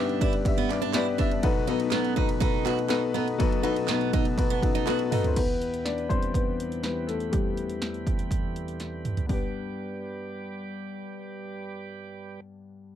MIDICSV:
0, 0, Header, 1, 5, 480
1, 0, Start_track
1, 0, Key_signature, 1, "major"
1, 0, Tempo, 491400
1, 1402, Time_signature, 4, 2, 24, 8
1, 12654, End_track
2, 0, Start_track
2, 0, Title_t, "Upright piano"
2, 0, Program_c, 0, 0
2, 0, Control_c, 0, 64, 127
2, 0, Note_on_c, 0, 31, 84
2, 0, Note_on_c, 0, 43, 86
2, 0, Note_on_c, 0, 59, 102
2, 0, Note_on_c, 0, 62, 82
2, 0, Note_on_c, 0, 67, 88
2, 0, Note_on_c, 0, 71, 81
2, 0, Note_on_c, 0, 74, 127
2, 0, Note_on_c, 0, 76, 91
2, 167, Note_off_c, 0, 59, 0
2, 170, Note_off_c, 0, 62, 0
2, 172, Note_off_c, 0, 67, 0
2, 173, Note_off_c, 0, 71, 0
2, 175, Note_off_c, 0, 76, 0
2, 199, Note_on_c, 0, 59, 98
2, 200, Note_on_c, 0, 62, 86
2, 202, Note_on_c, 0, 67, 89
2, 205, Note_on_c, 0, 71, 85
2, 210, Note_off_c, 0, 74, 0
2, 210, Note_on_c, 0, 74, 99
2, 407, Note_off_c, 0, 59, 0
2, 407, Note_off_c, 0, 62, 0
2, 408, Note_off_c, 0, 67, 0
2, 410, Note_off_c, 0, 71, 0
2, 412, Note_off_c, 0, 74, 0
2, 442, Note_on_c, 0, 59, 86
2, 450, Note_on_c, 0, 62, 77
2, 454, Note_on_c, 0, 67, 77
2, 455, Note_on_c, 0, 71, 82
2, 459, Note_on_c, 0, 76, 105
2, 648, Note_off_c, 0, 59, 0
2, 652, Note_off_c, 0, 62, 0
2, 654, Note_off_c, 0, 67, 0
2, 655, Note_off_c, 0, 71, 0
2, 657, Note_off_c, 0, 76, 0
2, 682, Note_on_c, 0, 59, 88
2, 686, Note_on_c, 0, 62, 79
2, 687, Note_on_c, 0, 67, 77
2, 693, Note_on_c, 0, 71, 76
2, 695, Note_on_c, 0, 74, 97
2, 888, Note_off_c, 0, 59, 0
2, 890, Note_off_c, 0, 62, 0
2, 890, Note_off_c, 0, 67, 0
2, 893, Note_off_c, 0, 71, 0
2, 894, Note_off_c, 0, 74, 0
2, 915, Note_on_c, 0, 59, 113
2, 922, Note_on_c, 0, 62, 103
2, 923, Note_on_c, 0, 67, 110
2, 930, Note_on_c, 0, 71, 110
2, 930, Note_on_c, 0, 74, 126
2, 1124, Note_off_c, 0, 59, 0
2, 1127, Note_off_c, 0, 62, 0
2, 1128, Note_off_c, 0, 67, 0
2, 1131, Note_off_c, 0, 71, 0
2, 1132, Note_off_c, 0, 74, 0
2, 1157, Note_on_c, 0, 59, 97
2, 1162, Note_on_c, 0, 62, 83
2, 1163, Note_on_c, 0, 67, 89
2, 1167, Note_on_c, 0, 71, 80
2, 1169, Note_on_c, 0, 76, 112
2, 1364, Note_off_c, 0, 31, 0
2, 1365, Note_off_c, 0, 43, 0
2, 1365, Note_off_c, 0, 59, 0
2, 1367, Note_off_c, 0, 62, 0
2, 1368, Note_off_c, 0, 67, 0
2, 1369, Note_off_c, 0, 71, 0
2, 1371, Note_off_c, 0, 76, 0
2, 1391, Note_on_c, 0, 59, 114
2, 1398, Note_on_c, 0, 63, 111
2, 1398, Note_on_c, 0, 66, 114
2, 1399, Note_on_c, 0, 35, 89
2, 1399, Note_on_c, 0, 47, 90
2, 1399, Note_on_c, 0, 69, 109
2, 1403, Note_on_c, 0, 71, 127
2, 1412, Control_c, 0, 64, 0
2, 1567, Control_c, 0, 64, 127
2, 1601, Note_off_c, 0, 59, 0
2, 1605, Note_off_c, 0, 63, 0
2, 1605, Note_off_c, 0, 66, 0
2, 1605, Note_off_c, 0, 69, 0
2, 1607, Note_off_c, 0, 71, 0
2, 1636, Note_on_c, 0, 59, 122
2, 1639, Note_on_c, 0, 63, 114
2, 1642, Note_on_c, 0, 66, 118
2, 1645, Note_on_c, 0, 69, 110
2, 1649, Note_on_c, 0, 71, 123
2, 1843, Note_off_c, 0, 59, 0
2, 1845, Note_off_c, 0, 63, 0
2, 1847, Note_off_c, 0, 66, 0
2, 1848, Note_off_c, 0, 69, 0
2, 1850, Note_off_c, 0, 71, 0
2, 1868, Note_on_c, 0, 59, 98
2, 1873, Note_on_c, 0, 63, 87
2, 1876, Note_on_c, 0, 66, 83
2, 1879, Note_on_c, 0, 69, 85
2, 1884, Note_on_c, 0, 71, 112
2, 2079, Note_off_c, 0, 59, 0
2, 2081, Note_off_c, 0, 63, 0
2, 2083, Note_off_c, 0, 66, 0
2, 2085, Note_off_c, 0, 69, 0
2, 2087, Note_off_c, 0, 71, 0
2, 2109, Note_on_c, 0, 59, 90
2, 2115, Note_on_c, 0, 63, 89
2, 2117, Note_on_c, 0, 66, 80
2, 2122, Note_on_c, 0, 69, 73
2, 2125, Note_on_c, 0, 71, 96
2, 2320, Note_off_c, 0, 59, 0
2, 2322, Note_off_c, 0, 63, 0
2, 2323, Note_off_c, 0, 66, 0
2, 2326, Note_off_c, 0, 69, 0
2, 2327, Note_off_c, 0, 71, 0
2, 2351, Note_on_c, 0, 59, 87
2, 2353, Note_on_c, 0, 63, 76
2, 2356, Note_on_c, 0, 66, 82
2, 2360, Note_on_c, 0, 69, 81
2, 2363, Note_on_c, 0, 71, 98
2, 2560, Note_off_c, 0, 59, 0
2, 2561, Note_off_c, 0, 63, 0
2, 2563, Note_off_c, 0, 66, 0
2, 2564, Note_off_c, 0, 69, 0
2, 2566, Note_off_c, 0, 71, 0
2, 2588, Note_on_c, 0, 59, 92
2, 2590, Note_on_c, 0, 63, 90
2, 2593, Note_on_c, 0, 66, 77
2, 2595, Note_on_c, 0, 69, 82
2, 2597, Note_on_c, 0, 71, 99
2, 2798, Note_off_c, 0, 59, 0
2, 2799, Note_off_c, 0, 63, 0
2, 2801, Note_off_c, 0, 66, 0
2, 2802, Note_off_c, 0, 69, 0
2, 2803, Note_off_c, 0, 71, 0
2, 2821, Note_on_c, 0, 59, 121
2, 2822, Note_on_c, 0, 63, 97
2, 2826, Note_on_c, 0, 66, 107
2, 2831, Note_on_c, 0, 69, 114
2, 2833, Note_on_c, 0, 71, 127
2, 3034, Note_off_c, 0, 59, 0
2, 3035, Note_off_c, 0, 63, 0
2, 3037, Note_off_c, 0, 66, 0
2, 3040, Note_off_c, 0, 69, 0
2, 3040, Note_off_c, 0, 71, 0
2, 3063, Note_on_c, 0, 63, 96
2, 3064, Note_on_c, 0, 59, 108
2, 3068, Note_on_c, 0, 66, 84
2, 3073, Note_on_c, 0, 69, 86
2, 3073, Note_on_c, 0, 71, 109
2, 3275, Note_off_c, 0, 63, 0
2, 3276, Note_off_c, 0, 59, 0
2, 3277, Note_off_c, 0, 35, 0
2, 3277, Note_off_c, 0, 47, 0
2, 3278, Note_off_c, 0, 66, 0
2, 3280, Note_off_c, 0, 69, 0
2, 3280, Note_off_c, 0, 71, 0
2, 3306, Note_on_c, 0, 59, 126
2, 3307, Note_on_c, 0, 63, 106
2, 3307, Note_on_c, 0, 66, 117
2, 3309, Note_on_c, 0, 35, 86
2, 3309, Note_on_c, 0, 47, 78
2, 3315, Note_on_c, 0, 69, 117
2, 3319, Note_on_c, 0, 71, 127
2, 3516, Note_off_c, 0, 59, 0
2, 3517, Note_off_c, 0, 63, 0
2, 3517, Note_off_c, 0, 66, 0
2, 3521, Note_off_c, 0, 69, 0
2, 3523, Note_off_c, 0, 71, 0
2, 3543, Note_on_c, 0, 59, 121
2, 3547, Note_on_c, 0, 63, 116
2, 3548, Note_on_c, 0, 66, 107
2, 3553, Note_on_c, 0, 69, 105
2, 3553, Note_on_c, 0, 71, 127
2, 3755, Note_off_c, 0, 59, 0
2, 3757, Note_off_c, 0, 63, 0
2, 3757, Note_off_c, 0, 66, 0
2, 3760, Note_off_c, 0, 69, 0
2, 3760, Note_off_c, 0, 71, 0
2, 3781, Note_on_c, 0, 59, 98
2, 3786, Note_on_c, 0, 63, 80
2, 3789, Note_on_c, 0, 66, 82
2, 3792, Note_on_c, 0, 69, 83
2, 3795, Note_on_c, 0, 71, 100
2, 3993, Note_off_c, 0, 59, 0
2, 3996, Note_off_c, 0, 63, 0
2, 3998, Note_off_c, 0, 66, 0
2, 3999, Note_off_c, 0, 69, 0
2, 4001, Note_off_c, 0, 71, 0
2, 4031, Note_on_c, 0, 59, 86
2, 4032, Note_on_c, 0, 63, 75
2, 4036, Note_on_c, 0, 66, 78
2, 4040, Note_on_c, 0, 69, 84
2, 4041, Note_on_c, 0, 71, 98
2, 4238, Note_off_c, 0, 59, 0
2, 4239, Note_off_c, 0, 63, 0
2, 4241, Note_off_c, 0, 66, 0
2, 4243, Note_off_c, 0, 69, 0
2, 4244, Note_off_c, 0, 71, 0
2, 4273, Note_on_c, 0, 63, 78
2, 4275, Note_on_c, 0, 59, 92
2, 4279, Note_on_c, 0, 69, 77
2, 4282, Note_on_c, 0, 66, 79
2, 4287, Note_on_c, 0, 71, 103
2, 4479, Note_off_c, 0, 63, 0
2, 4480, Note_off_c, 0, 59, 0
2, 4482, Note_off_c, 0, 69, 0
2, 4484, Note_off_c, 0, 66, 0
2, 4486, Note_off_c, 0, 71, 0
2, 4512, Note_on_c, 0, 59, 94
2, 4516, Note_on_c, 0, 63, 81
2, 4517, Note_on_c, 0, 66, 84
2, 4520, Note_on_c, 0, 69, 82
2, 4523, Note_on_c, 0, 71, 88
2, 4719, Note_off_c, 0, 59, 0
2, 4721, Note_off_c, 0, 63, 0
2, 4721, Note_off_c, 0, 66, 0
2, 4723, Note_off_c, 0, 69, 0
2, 4724, Note_off_c, 0, 71, 0
2, 4747, Note_on_c, 0, 63, 97
2, 4748, Note_on_c, 0, 59, 125
2, 4752, Note_on_c, 0, 66, 103
2, 4755, Note_on_c, 0, 69, 98
2, 4757, Note_on_c, 0, 71, 125
2, 4956, Note_off_c, 0, 59, 0
2, 4956, Note_off_c, 0, 63, 0
2, 4959, Note_off_c, 0, 66, 0
2, 4960, Note_off_c, 0, 69, 0
2, 4961, Note_off_c, 0, 71, 0
2, 4987, Note_on_c, 0, 59, 92
2, 4990, Note_on_c, 0, 63, 92
2, 4995, Note_on_c, 0, 66, 95
2, 5000, Note_on_c, 0, 69, 96
2, 5001, Note_on_c, 0, 71, 109
2, 5149, Note_on_c, 0, 72, 78
2, 5191, Note_off_c, 0, 35, 0
2, 5191, Note_off_c, 0, 47, 0
2, 5196, Note_off_c, 0, 59, 0
2, 5197, Note_off_c, 0, 63, 0
2, 5200, Note_off_c, 0, 66, 0
2, 5202, Note_off_c, 0, 69, 0
2, 5203, Note_off_c, 0, 71, 0
2, 5226, Note_off_c, 0, 72, 0
2, 5239, Note_on_c, 0, 71, 97
2, 5241, Note_on_c, 0, 59, 73
2, 5247, Control_c, 0, 64, 0
2, 5412, Control_c, 0, 64, 127
2, 5684, Note_off_c, 0, 59, 0
2, 5713, Note_on_c, 0, 74, 81
2, 5720, Note_on_c, 0, 62, 74
2, 5731, Note_off_c, 0, 71, 0
2, 5767, Note_off_c, 0, 74, 0
2, 5773, Note_off_c, 0, 62, 0
2, 5948, Note_on_c, 0, 52, 45
2, 5951, Note_on_c, 0, 72, 86
2, 5954, Note_on_c, 0, 55, 46
2, 5960, Note_on_c, 0, 59, 51
2, 5962, Note_on_c, 0, 60, 60
2, 6182, Note_off_c, 0, 60, 0
2, 6187, Note_off_c, 0, 59, 0
2, 6192, Note_on_c, 0, 71, 76
2, 6200, Note_off_c, 0, 72, 0
2, 6202, Note_on_c, 0, 59, 67
2, 6635, Note_off_c, 0, 52, 0
2, 6638, Note_off_c, 0, 55, 0
2, 6645, Note_off_c, 0, 59, 0
2, 6656, Note_off_c, 0, 71, 0
2, 6670, Note_on_c, 0, 71, 82
2, 6672, Note_on_c, 0, 52, 40
2, 6676, Note_on_c, 0, 55, 35
2, 6680, Note_on_c, 0, 59, 60
2, 6889, Note_off_c, 0, 52, 0
2, 6892, Note_off_c, 0, 55, 0
2, 6904, Note_off_c, 0, 59, 0
2, 6905, Note_on_c, 0, 69, 81
2, 6920, Note_off_c, 0, 71, 0
2, 6923, Note_on_c, 0, 57, 56
2, 7143, Note_off_c, 0, 57, 0
2, 7147, Note_on_c, 0, 67, 81
2, 7149, Note_on_c, 0, 52, 52
2, 7157, Note_on_c, 0, 55, 61
2, 7158, Note_off_c, 0, 69, 0
2, 7161, Note_on_c, 0, 59, 54
2, 7837, Note_off_c, 0, 52, 0
2, 7843, Note_off_c, 0, 59, 0
2, 8795, Note_off_c, 0, 67, 0
2, 8803, Note_off_c, 0, 55, 0
2, 9049, Note_on_c, 0, 59, 62
2, 9067, Note_on_c, 0, 62, 58
2, 9076, Note_on_c, 0, 43, 61
2, 9085, Note_on_c, 0, 67, 64
2, 9093, Control_c, 0, 64, 0
2, 9101, Note_on_c, 0, 71, 71
2, 9252, Control_c, 0, 64, 127
2, 12086, Note_off_c, 0, 59, 0
2, 12104, Note_off_c, 0, 62, 0
2, 12112, Note_off_c, 0, 43, 0
2, 12121, Note_off_c, 0, 67, 0
2, 12137, Note_off_c, 0, 71, 0
2, 12654, End_track
3, 0, Start_track
3, 0, Title_t, "Tonewheel organ"
3, 0, Program_c, 1, 16
3, 0, Note_on_c, 1, 43, 65
3, 0, Note_on_c, 1, 55, 58
3, 0, Note_on_c, 1, 64, 62
3, 0, Note_on_c, 1, 71, 73
3, 1368, Note_off_c, 1, 55, 0
3, 1370, Note_off_c, 1, 43, 0
3, 1382, Note_off_c, 1, 64, 0
3, 1404, Note_on_c, 1, 57, 64
3, 1405, Note_on_c, 1, 47, 64
3, 1406, Note_on_c, 1, 63, 69
3, 3284, Note_off_c, 1, 71, 0
3, 3313, Note_on_c, 1, 69, 77
3, 5197, Note_off_c, 1, 57, 0
3, 5198, Note_off_c, 1, 47, 0
3, 5198, Note_off_c, 1, 63, 0
3, 5213, Note_off_c, 1, 69, 0
3, 5243, Note_on_c, 1, 52, 45
3, 5246, Note_on_c, 1, 71, 60
3, 5247, Note_on_c, 1, 40, 59
3, 5250, Note_on_c, 1, 67, 47
3, 9045, Note_off_c, 1, 52, 0
3, 9046, Note_off_c, 1, 71, 0
3, 9047, Note_off_c, 1, 40, 0
3, 9048, Note_off_c, 1, 67, 0
3, 9078, Note_on_c, 1, 55, 47
3, 9079, Note_on_c, 1, 74, 57
3, 9081, Note_on_c, 1, 67, 45
3, 9081, Note_on_c, 1, 71, 42
3, 12115, Note_off_c, 1, 55, 0
3, 12116, Note_off_c, 1, 74, 0
3, 12117, Note_off_c, 1, 71, 0
3, 12118, Note_off_c, 1, 67, 0
3, 12654, End_track
4, 0, Start_track
4, 0, Title_t, "Steel-string acoustic guitar"
4, 0, Program_c, 2, 25
4, 0, Note_on_c, 2, 62, 82
4, 191, Note_off_c, 2, 62, 0
4, 208, Note_on_c, 2, 64, 87
4, 320, Note_off_c, 2, 64, 0
4, 563, Note_on_c, 2, 59, 75
4, 677, Note_off_c, 2, 59, 0
4, 797, Note_on_c, 2, 62, 74
4, 914, Note_off_c, 2, 62, 0
4, 918, Note_on_c, 2, 64, 92
4, 1034, Note_off_c, 2, 64, 0
4, 1154, Note_on_c, 2, 62, 75
4, 1272, Note_off_c, 2, 62, 0
4, 1635, Note_on_c, 2, 63, 75
4, 1752, Note_off_c, 2, 63, 0
4, 1872, Note_on_c, 2, 59, 85
4, 2103, Note_off_c, 2, 59, 0
4, 2111, Note_on_c, 2, 63, 73
4, 2229, Note_off_c, 2, 63, 0
4, 2348, Note_on_c, 2, 63, 83
4, 2581, Note_off_c, 2, 63, 0
4, 2594, Note_on_c, 2, 66, 68
4, 2710, Note_off_c, 2, 66, 0
4, 2833, Note_on_c, 2, 63, 78
4, 2949, Note_off_c, 2, 63, 0
4, 3070, Note_on_c, 2, 59, 79
4, 3187, Note_off_c, 2, 59, 0
4, 3549, Note_on_c, 2, 63, 80
4, 3667, Note_off_c, 2, 63, 0
4, 3793, Note_on_c, 2, 59, 75
4, 4022, Note_off_c, 2, 59, 0
4, 4039, Note_on_c, 2, 63, 80
4, 4151, Note_off_c, 2, 63, 0
4, 4399, Note_on_c, 2, 59, 76
4, 4511, Note_off_c, 2, 59, 0
4, 4639, Note_on_c, 2, 63, 82
4, 4751, Note_off_c, 2, 63, 0
4, 4761, Note_on_c, 2, 66, 77
4, 4872, Note_off_c, 2, 66, 0
4, 5001, Note_on_c, 2, 63, 75
4, 5112, Note_off_c, 2, 63, 0
4, 12654, End_track
5, 0, Start_track
5, 0, Title_t, "Drums"
5, 91, Note_on_c, 9, 51, 37
5, 189, Note_off_c, 9, 51, 0
5, 206, Note_on_c, 9, 36, 94
5, 213, Note_on_c, 9, 51, 51
5, 304, Note_off_c, 9, 36, 0
5, 310, Note_off_c, 9, 51, 0
5, 321, Note_on_c, 9, 51, 48
5, 419, Note_off_c, 9, 51, 0
5, 441, Note_on_c, 9, 36, 101
5, 447, Note_on_c, 9, 51, 74
5, 538, Note_off_c, 9, 36, 0
5, 545, Note_off_c, 9, 51, 0
5, 686, Note_on_c, 9, 39, 81
5, 688, Note_on_c, 9, 51, 64
5, 784, Note_off_c, 9, 39, 0
5, 786, Note_off_c, 9, 51, 0
5, 804, Note_on_c, 9, 51, 43
5, 901, Note_off_c, 9, 51, 0
5, 914, Note_on_c, 9, 39, 90
5, 918, Note_on_c, 9, 51, 62
5, 920, Note_on_c, 9, 38, 120
5, 1012, Note_off_c, 9, 39, 0
5, 1015, Note_off_c, 9, 51, 0
5, 1017, Note_off_c, 9, 38, 0
5, 1160, Note_on_c, 9, 36, 95
5, 1160, Note_on_c, 9, 38, 43
5, 1161, Note_on_c, 9, 51, 58
5, 1257, Note_off_c, 9, 36, 0
5, 1258, Note_off_c, 9, 38, 0
5, 1259, Note_off_c, 9, 51, 0
5, 1284, Note_on_c, 9, 51, 44
5, 1382, Note_off_c, 9, 51, 0
5, 1398, Note_on_c, 9, 51, 85
5, 1400, Note_on_c, 9, 36, 127
5, 1495, Note_off_c, 9, 51, 0
5, 1498, Note_off_c, 9, 36, 0
5, 1638, Note_on_c, 9, 51, 65
5, 1736, Note_off_c, 9, 51, 0
5, 1756, Note_on_c, 9, 51, 55
5, 1854, Note_off_c, 9, 51, 0
5, 1867, Note_on_c, 9, 39, 83
5, 1875, Note_on_c, 9, 38, 100
5, 1877, Note_on_c, 9, 51, 74
5, 1965, Note_off_c, 9, 39, 0
5, 1972, Note_off_c, 9, 38, 0
5, 1974, Note_off_c, 9, 51, 0
5, 1999, Note_on_c, 9, 51, 38
5, 2097, Note_off_c, 9, 51, 0
5, 2118, Note_on_c, 9, 36, 88
5, 2120, Note_on_c, 9, 51, 47
5, 2216, Note_off_c, 9, 36, 0
5, 2218, Note_off_c, 9, 51, 0
5, 2236, Note_on_c, 9, 51, 45
5, 2334, Note_off_c, 9, 51, 0
5, 2354, Note_on_c, 9, 36, 99
5, 2362, Note_on_c, 9, 51, 78
5, 2452, Note_off_c, 9, 36, 0
5, 2460, Note_off_c, 9, 51, 0
5, 2596, Note_on_c, 9, 39, 80
5, 2607, Note_on_c, 9, 51, 71
5, 2694, Note_off_c, 9, 39, 0
5, 2705, Note_off_c, 9, 51, 0
5, 2723, Note_on_c, 9, 51, 39
5, 2820, Note_off_c, 9, 51, 0
5, 2828, Note_on_c, 9, 39, 94
5, 2834, Note_on_c, 9, 51, 59
5, 2836, Note_on_c, 9, 38, 95
5, 2925, Note_off_c, 9, 39, 0
5, 2932, Note_off_c, 9, 51, 0
5, 2934, Note_off_c, 9, 38, 0
5, 3081, Note_on_c, 9, 38, 39
5, 3082, Note_on_c, 9, 51, 63
5, 3179, Note_off_c, 9, 38, 0
5, 3180, Note_off_c, 9, 51, 0
5, 3201, Note_on_c, 9, 51, 38
5, 3298, Note_off_c, 9, 51, 0
5, 3319, Note_on_c, 9, 36, 126
5, 3320, Note_on_c, 9, 51, 82
5, 3416, Note_off_c, 9, 36, 0
5, 3418, Note_off_c, 9, 51, 0
5, 3443, Note_on_c, 9, 51, 34
5, 3541, Note_off_c, 9, 51, 0
5, 3561, Note_on_c, 9, 51, 62
5, 3659, Note_off_c, 9, 51, 0
5, 3677, Note_on_c, 9, 51, 53
5, 3775, Note_off_c, 9, 51, 0
5, 3788, Note_on_c, 9, 39, 85
5, 3794, Note_on_c, 9, 38, 121
5, 3796, Note_on_c, 9, 51, 68
5, 3886, Note_off_c, 9, 39, 0
5, 3892, Note_off_c, 9, 38, 0
5, 3894, Note_off_c, 9, 51, 0
5, 3917, Note_on_c, 9, 51, 32
5, 4015, Note_off_c, 9, 51, 0
5, 4037, Note_on_c, 9, 36, 98
5, 4038, Note_on_c, 9, 51, 50
5, 4135, Note_off_c, 9, 36, 0
5, 4135, Note_off_c, 9, 51, 0
5, 4155, Note_on_c, 9, 51, 40
5, 4252, Note_off_c, 9, 51, 0
5, 4275, Note_on_c, 9, 36, 93
5, 4284, Note_on_c, 9, 51, 79
5, 4372, Note_off_c, 9, 36, 0
5, 4381, Note_off_c, 9, 51, 0
5, 4398, Note_on_c, 9, 51, 39
5, 4496, Note_off_c, 9, 51, 0
5, 4518, Note_on_c, 9, 36, 84
5, 4524, Note_on_c, 9, 51, 62
5, 4616, Note_off_c, 9, 36, 0
5, 4622, Note_off_c, 9, 51, 0
5, 4641, Note_on_c, 9, 51, 39
5, 4738, Note_off_c, 9, 51, 0
5, 4754, Note_on_c, 9, 39, 90
5, 4757, Note_on_c, 9, 51, 57
5, 4760, Note_on_c, 9, 38, 55
5, 4852, Note_off_c, 9, 39, 0
5, 4855, Note_off_c, 9, 51, 0
5, 4858, Note_off_c, 9, 38, 0
5, 4875, Note_on_c, 9, 51, 39
5, 4973, Note_off_c, 9, 51, 0
5, 5002, Note_on_c, 9, 46, 71
5, 5002, Note_on_c, 9, 51, 62
5, 5003, Note_on_c, 9, 45, 99
5, 5100, Note_off_c, 9, 45, 0
5, 5100, Note_off_c, 9, 46, 0
5, 5100, Note_off_c, 9, 51, 0
5, 5122, Note_on_c, 9, 51, 41
5, 5123, Note_on_c, 9, 43, 101
5, 5220, Note_off_c, 9, 43, 0
5, 5220, Note_off_c, 9, 51, 0
5, 5240, Note_on_c, 9, 42, 80
5, 5240, Note_on_c, 9, 49, 74
5, 5241, Note_on_c, 9, 36, 99
5, 5337, Note_off_c, 9, 42, 0
5, 5337, Note_off_c, 9, 49, 0
5, 5339, Note_off_c, 9, 36, 0
5, 5485, Note_on_c, 9, 42, 69
5, 5583, Note_off_c, 9, 42, 0
5, 5604, Note_on_c, 9, 42, 52
5, 5701, Note_off_c, 9, 42, 0
5, 5720, Note_on_c, 9, 38, 95
5, 5722, Note_on_c, 9, 42, 68
5, 5818, Note_off_c, 9, 38, 0
5, 5819, Note_off_c, 9, 42, 0
5, 5840, Note_on_c, 9, 42, 27
5, 5938, Note_off_c, 9, 42, 0
5, 5960, Note_on_c, 9, 36, 79
5, 5966, Note_on_c, 9, 42, 50
5, 6058, Note_off_c, 9, 36, 0
5, 6064, Note_off_c, 9, 42, 0
5, 6080, Note_on_c, 9, 42, 40
5, 6178, Note_off_c, 9, 42, 0
5, 6196, Note_on_c, 9, 36, 82
5, 6203, Note_on_c, 9, 42, 71
5, 6294, Note_off_c, 9, 36, 0
5, 6301, Note_off_c, 9, 42, 0
5, 6447, Note_on_c, 9, 42, 62
5, 6545, Note_off_c, 9, 42, 0
5, 6564, Note_on_c, 9, 42, 39
5, 6661, Note_off_c, 9, 42, 0
5, 6676, Note_on_c, 9, 42, 57
5, 6678, Note_on_c, 9, 38, 80
5, 6773, Note_off_c, 9, 42, 0
5, 6775, Note_off_c, 9, 38, 0
5, 6922, Note_on_c, 9, 38, 30
5, 6923, Note_on_c, 9, 42, 55
5, 7020, Note_off_c, 9, 38, 0
5, 7020, Note_off_c, 9, 42, 0
5, 7036, Note_on_c, 9, 42, 38
5, 7134, Note_off_c, 9, 42, 0
5, 7158, Note_on_c, 9, 42, 68
5, 7159, Note_on_c, 9, 36, 98
5, 7255, Note_off_c, 9, 42, 0
5, 7257, Note_off_c, 9, 36, 0
5, 7399, Note_on_c, 9, 42, 62
5, 7496, Note_off_c, 9, 42, 0
5, 7517, Note_on_c, 9, 42, 45
5, 7614, Note_off_c, 9, 42, 0
5, 7636, Note_on_c, 9, 38, 82
5, 7638, Note_on_c, 9, 42, 71
5, 7733, Note_off_c, 9, 38, 0
5, 7735, Note_off_c, 9, 42, 0
5, 7758, Note_on_c, 9, 42, 26
5, 7856, Note_off_c, 9, 42, 0
5, 7879, Note_on_c, 9, 36, 73
5, 7883, Note_on_c, 9, 42, 46
5, 7977, Note_off_c, 9, 36, 0
5, 7981, Note_off_c, 9, 42, 0
5, 7999, Note_on_c, 9, 42, 40
5, 8097, Note_off_c, 9, 42, 0
5, 8115, Note_on_c, 9, 36, 69
5, 8123, Note_on_c, 9, 42, 70
5, 8213, Note_off_c, 9, 36, 0
5, 8221, Note_off_c, 9, 42, 0
5, 8362, Note_on_c, 9, 42, 55
5, 8460, Note_off_c, 9, 42, 0
5, 8480, Note_on_c, 9, 42, 35
5, 8578, Note_off_c, 9, 42, 0
5, 8594, Note_on_c, 9, 42, 48
5, 8597, Note_on_c, 9, 38, 40
5, 8691, Note_off_c, 9, 42, 0
5, 8695, Note_off_c, 9, 38, 0
5, 8840, Note_on_c, 9, 42, 51
5, 8841, Note_on_c, 9, 45, 64
5, 8938, Note_off_c, 9, 42, 0
5, 8939, Note_off_c, 9, 45, 0
5, 8960, Note_on_c, 9, 42, 37
5, 8960, Note_on_c, 9, 43, 65
5, 9057, Note_off_c, 9, 42, 0
5, 9058, Note_off_c, 9, 43, 0
5, 9078, Note_on_c, 9, 36, 70
5, 9079, Note_on_c, 9, 46, 60
5, 9176, Note_off_c, 9, 36, 0
5, 9176, Note_off_c, 9, 46, 0
5, 12654, End_track
0, 0, End_of_file